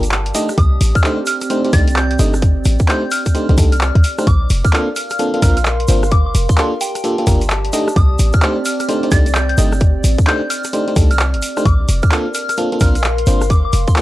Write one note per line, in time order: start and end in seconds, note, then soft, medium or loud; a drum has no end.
0.00 0.32 G1 loud
0.00 5.02 G4 medium
0.00 5.02 D5 medium
0.00 1.43 A5 medium
0.00 closed hi-hat medium
0.00 shaker medium
0.11 clap loud
0.11 shaker soft
0.26 closed hi-hat medium
0.35 0.50 A3 loud
0.35 5.02 C4 medium
0.35 0.50 D4 medium
0.35 0.50 D#4 medium
0.35 0.50 G4 medium
0.35 0.50 D#5 loud
0.35 open hi-hat medium
0.35 shaker medium
0.49 cross-stick medium
0.49 shaker medium
0.58 0.78 C2 loud
0.58 0.77 D#6 medium
0.58 kick loud
0.58 closed hi-hat medium
0.58 shaker soft
0.81 0.93 A1 medium
0.81 open hi-hat loud
0.81 shaker medium
0.95 1.11 F6 medium
0.95 kick loud
0.95 shaker medium
1.04 1.19 A3 loud
1.04 1.19 D4 medium
1.04 1.19 D#4 medium
1.04 1.19 G4 medium
1.04 1.19 C5 loud
1.04 clap loud
1.04 shaker soft
1.26 1.36 F6 medium
1.26 open hi-hat loud
1.26 shaker medium
1.41 1.47 F6 medium
1.41 cross-stick soft
1.41 closed hi-hat medium
1.41 shaker medium
1.50 1.62 A3 medium
1.50 1.62 D4 medium
1.50 1.62 D#4 medium
1.50 1.62 G4 medium
1.50 1.62 C5 loud
1.50 closed hi-hat medium
1.50 shaker soft
1.65 1.71 A3 medium
1.65 1.71 D4 medium
1.65 1.71 D#4 medium
1.65 1.71 G4 medium
1.65 1.71 C5 medium
1.65 closed hi-hat soft
1.73 2.17 C2 medium
1.73 1.88 A3 medium
1.73 1.88 D4 medium
1.73 1.88 D#4 medium
1.73 1.88 G4 medium
1.73 1.88 D5 loud
1.73 1.92 A6 medium
1.73 kick loud
1.73 open hi-hat loud
1.73 shaker medium
1.88 closed hi-hat medium
1.88 shaker soft
1.96 2.05 G6 medium
1.96 clap loud
1.96 shaker soft
2.11 2.16 G6 medium
2.11 closed hi-hat medium
2.19 2.63 G1 loud
2.19 2.34 A3 loud
2.19 2.34 D4 medium
2.19 2.34 D#4 medium
2.19 2.34 G4 medium
2.19 2.34 D#5 loud
2.19 open hi-hat loud
2.19 shaker medium
2.34 cross-stick medium
2.34 shaker soft
2.42 kick loud
2.42 closed hi-hat medium
2.42 shaker soft
2.65 2.77 A1 medium
2.65 cross-stick soft
2.65 open hi-hat loud
2.65 shaker medium
2.79 kick loud
2.79 shaker medium
2.88 3.03 A3 loud
2.88 3.03 D4 medium
2.88 3.03 D#4 medium
2.88 3.03 G4 medium
2.88 3.03 C5 loud
2.88 3.07 G6 medium
2.88 clap loud
2.88 shaker soft
3.11 3.30 F6 medium
3.11 open hi-hat loud
3.11 shaker medium
3.26 kick medium
3.26 cross-stick soft
3.26 closed hi-hat medium
3.26 shaker medium
3.35 3.47 A3 medium
3.35 3.47 D4 medium
3.35 3.47 D#4 medium
3.35 3.47 G4 medium
3.35 3.47 C5 loud
3.35 closed hi-hat medium
3.35 shaker soft
3.49 3.56 C2 loud
3.49 3.56 A3 medium
3.49 3.56 D4 medium
3.49 3.56 D#4 medium
3.49 3.56 G4 medium
3.49 3.56 C5 medium
3.49 closed hi-hat soft
3.58 3.91 C2 medium
3.58 3.73 A3 medium
3.58 3.73 D4 medium
3.58 3.73 D#4 medium
3.58 3.73 G4 medium
3.58 3.73 A4 loud
3.58 kick loud
3.58 open hi-hat loud
3.58 shaker medium
3.72 4.33 F6 medium
3.72 closed hi-hat medium
3.72 shaker medium
3.81 clap loud
3.81 shaker soft
3.95 4.02 D#2 medium
3.95 kick medium
3.95 closed hi-hat medium
4.04 open hi-hat loud
4.04 shaker medium
4.18 4.26 A3 medium
4.18 4.26 D4 medium
4.18 4.26 D#4 medium
4.18 4.26 G4 medium
4.18 4.26 C5 medium
4.18 cross-stick medium
4.18 shaker medium
4.27 4.47 A#1 loud
4.27 6.77 A#4 medium
4.27 4.46 D6 medium
4.27 kick loud
4.27 closed hi-hat medium
4.27 shaker soft
4.49 4.62 F1 medium
4.49 6.77 F5 loud
4.49 open hi-hat loud
4.49 shaker medium
4.65 4.80 F6 medium
4.65 kick loud
4.65 shaker medium
4.73 4.88 A#3 medium
4.73 4.88 C4 medium
4.73 4.88 D4 medium
4.73 4.88 F4 medium
4.73 4.88 A4 loud
4.73 clap loud
4.73 shaker soft
4.96 5.06 F6 medium
4.96 open hi-hat medium
4.96 shaker medium
5.10 6.77 C6 medium
5.10 5.16 F6 medium
5.10 cross-stick soft
5.10 closed hi-hat medium
5.10 shaker soft
5.19 5.32 A#3 medium
5.19 5.32 C4 medium
5.19 5.32 D4 medium
5.19 5.32 F4 medium
5.19 5.32 A4 loud
5.19 closed hi-hat medium
5.19 shaker soft
5.34 5.41 A#3 medium
5.34 5.41 C4 medium
5.34 5.41 D4 medium
5.34 5.41 F4 medium
5.34 5.41 A4 medium
5.34 closed hi-hat soft
5.42 5.86 A#1 medium
5.42 5.57 A#3 medium
5.42 5.57 C4 medium
5.42 5.57 D4 medium
5.42 5.57 F4 medium
5.42 5.57 A#4 loud
5.42 5.52 F6 medium
5.42 kick loud
5.42 open hi-hat loud
5.42 shaker medium
5.57 5.62 F6 medium
5.57 closed hi-hat medium
5.57 shaker medium
5.65 clap loud
5.65 shaker soft
5.80 closed hi-hat medium
5.88 6.32 G1 loud
5.88 6.03 A#3 medium
5.88 6.03 C4 medium
5.88 6.03 D4 medium
5.88 6.03 F4 medium
5.88 6.03 C5 loud
5.88 open hi-hat loud
5.88 shaker medium
6.03 cross-stick medium
6.03 shaker soft
6.11 12.41 G4 medium
6.11 6.21 D6 medium
6.11 kick loud
6.11 closed hi-hat medium
6.11 shaker soft
6.26 6.32 D6 medium
6.35 6.47 F1 medium
6.35 open hi-hat loud
6.35 shaker medium
6.49 12.41 D5 loud
6.49 6.55 C6 medium
6.49 kick loud
6.49 shaker medium
6.57 6.73 A#3 loud
6.57 6.73 D4 medium
6.57 6.73 F4 medium
6.57 6.73 G4 medium
6.57 6.73 A4 loud
6.57 6.67 C6 medium
6.57 clap loud
6.57 shaker soft
6.73 9.05 A5 medium
6.81 7.27 G5 medium
6.81 open hi-hat medium
6.81 shaker medium
6.95 cross-stick soft
6.95 closed hi-hat medium
6.95 shaker medium
7.04 7.16 A#3 medium
7.04 7.16 D4 medium
7.04 7.16 F4 medium
7.04 7.16 G4 medium
7.04 7.16 A4 loud
7.04 closed hi-hat medium
7.04 shaker soft
7.18 7.25 A#3 medium
7.18 7.25 D4 medium
7.18 7.25 F4 medium
7.18 7.25 G4 medium
7.18 7.25 A4 medium
7.18 closed hi-hat soft
7.27 7.71 G1 loud
7.27 7.42 A#3 medium
7.27 7.42 D4 medium
7.27 7.42 F4 medium
7.27 7.42 G4 medium
7.27 7.42 A#4 loud
7.27 kick loud
7.27 open hi-hat loud
7.27 shaker loud
7.41 closed hi-hat medium
7.41 shaker medium
7.50 clap loud
7.50 shaker soft
7.65 closed hi-hat soft
7.73 7.88 A3 loud
7.73 12.41 C4 medium
7.73 7.88 D4 medium
7.73 7.88 D#4 medium
7.73 7.88 G4 medium
7.73 7.88 D#5 loud
7.73 open hi-hat medium
7.73 shaker loud
7.88 cross-stick medium
7.88 shaker medium
7.96 8.16 C2 loud
7.96 8.15 D#6 medium
7.96 kick loud
7.96 closed hi-hat medium
8.19 8.31 A1 medium
8.19 open hi-hat loud
8.19 shaker loud
8.33 8.50 F6 medium
8.33 kick loud
8.33 shaker medium
8.42 8.57 A3 loud
8.42 8.57 D4 medium
8.42 8.57 D#4 medium
8.42 8.57 G4 medium
8.42 8.57 C5 loud
8.42 clap loud
8.42 shaker soft
8.65 8.75 F6 medium
8.65 open hi-hat medium
8.65 shaker medium
8.80 8.85 F6 medium
8.80 cross-stick soft
8.80 closed hi-hat medium
8.80 shaker medium
8.89 9.01 A3 medium
8.89 9.01 D4 medium
8.89 9.01 D#4 medium
8.89 9.01 G4 medium
8.89 9.01 C5 loud
8.89 closed hi-hat medium
8.89 shaker soft
9.03 9.10 A3 medium
9.03 9.10 D4 medium
9.03 9.10 D#4 medium
9.03 9.10 G4 medium
9.03 9.10 C5 medium
9.03 closed hi-hat soft
9.11 9.55 C2 medium
9.11 9.26 A3 medium
9.11 9.27 D4 medium
9.11 9.27 D#4 medium
9.11 9.27 G4 medium
9.11 9.27 D5 loud
9.11 9.30 A6 medium
9.11 kick loud
9.11 open hi-hat loud
9.11 shaker loud
9.26 closed hi-hat medium
9.26 shaker medium
9.35 9.44 G6 medium
9.35 clap loud
9.35 shaker soft
9.49 9.55 G6 medium
9.49 closed hi-hat soft
9.58 10.02 G1 loud
9.58 9.73 A3 loud
9.58 9.73 D4 medium
9.58 9.73 D#4 medium
9.58 9.73 G4 medium
9.58 9.73 D#5 loud
9.58 open hi-hat medium
9.58 shaker loud
9.72 cross-stick medium
9.72 shaker medium
9.80 kick loud
9.80 closed hi-hat medium
9.80 shaker soft
10.04 10.16 A1 medium
10.04 open hi-hat loud
10.04 shaker loud
10.18 kick loud
10.18 shaker medium
10.27 10.42 A3 loud
10.27 10.42 D4 medium
10.27 10.42 D#4 medium
10.27 10.42 G4 medium
10.27 10.42 C5 loud
10.27 10.46 G6 medium
10.27 clap loud
10.27 shaker soft
10.50 10.69 F6 medium
10.50 open hi-hat medium
10.50 shaker medium
10.64 cross-stick soft
10.64 closed hi-hat medium
10.64 shaker medium
10.73 10.86 A3 medium
10.73 10.86 D4 medium
10.73 10.86 D#4 medium
10.73 10.86 G4 medium
10.73 10.86 C5 loud
10.73 closed hi-hat medium
10.73 shaker soft
10.88 10.95 A3 medium
10.88 10.95 D4 medium
10.88 10.95 D#4 medium
10.88 10.95 G4 medium
10.88 10.95 C5 medium
10.88 closed hi-hat soft
10.96 11.35 C2 loud
10.96 11.11 A3 medium
10.96 11.11 D4 medium
10.96 11.11 D#4 medium
10.96 11.11 G4 medium
10.96 11.11 A4 medium
10.96 kick loud
10.96 open hi-hat loud
10.96 shaker loud
11.11 11.71 F6 medium
11.11 closed hi-hat medium
11.11 shaker medium
11.19 clap loud
11.19 shaker soft
11.34 11.41 G1 loud
11.34 closed hi-hat medium
11.42 open hi-hat medium
11.42 shaker loud
11.57 11.64 A3 medium
11.57 11.64 D4 medium
11.57 11.64 D#4 medium
11.57 11.64 G4 medium
11.57 11.64 C5 medium
11.57 cross-stick medium
11.57 shaker medium
11.65 11.86 A#1 loud
11.65 14.02 A#4 medium
11.65 11.84 D6 medium
11.65 kick loud
11.65 closed hi-hat medium
11.65 shaker soft
11.89 12.01 F1 medium
11.89 open hi-hat loud
11.89 shaker loud
12.03 12.19 F6 medium
12.03 kick loud
12.03 shaker medium
12.11 12.26 A#3 medium
12.11 12.26 C4 medium
12.11 12.26 D4 medium
12.11 12.26 F4 medium
12.11 12.26 A4 loud
12.11 clap loud
12.11 shaker soft
12.27 14.02 F5 medium
12.34 12.44 F6 medium
12.34 open hi-hat medium
12.34 shaker medium
12.49 14.02 C6 medium
12.49 12.55 F6 medium
12.49 cross-stick soft
12.49 closed hi-hat medium
12.49 shaker medium
12.57 12.70 A#3 medium
12.57 12.70 C4 medium
12.57 12.70 D4 medium
12.57 12.70 F4 medium
12.57 12.70 A4 loud
12.57 closed hi-hat medium
12.57 shaker soft
12.72 12.79 A#3 medium
12.72 12.79 C4 medium
12.72 12.79 D4 medium
12.72 12.79 F4 medium
12.72 12.79 A4 medium
12.72 closed hi-hat soft
12.80 13.25 A#1 medium
12.80 12.96 A#3 medium
12.80 12.96 C4 medium
12.80 12.96 D4 medium
12.80 12.96 F4 medium
12.80 12.96 A#4 loud
12.80 12.90 F6 medium
12.80 kick loud
12.80 open hi-hat loud
12.80 shaker loud
12.95 13.01 F6 medium
12.95 closed hi-hat medium
12.95 shaker medium
13.03 clap loud
13.03 shaker soft
13.18 closed hi-hat medium
13.27 13.71 G1 loud
13.27 13.42 A#3 medium
13.27 13.42 C4 medium
13.27 13.42 D4 medium
13.27 13.42 F4 medium
13.27 13.42 C5 loud
13.27 open hi-hat medium
13.27 shaker loud
13.41 cross-stick medium
13.41 shaker medium
13.50 14.02 G4 medium
13.50 13.59 D6 medium
13.50 kick loud
13.50 closed hi-hat medium
13.50 shaker soft
13.65 13.70 D6 medium
13.73 13.85 F1 medium
13.73 open hi-hat loud
13.73 shaker medium
13.88 13.93 C6 medium
13.88 kick loud
13.88 shaker soft
13.96 14.02 A#3 loud
13.96 14.02 D4 medium
13.96 14.02 F4 medium
13.96 14.02 G4 medium
13.96 14.02 A4 loud
13.96 14.02 C6 medium
13.96 clap loud
13.96 shaker soft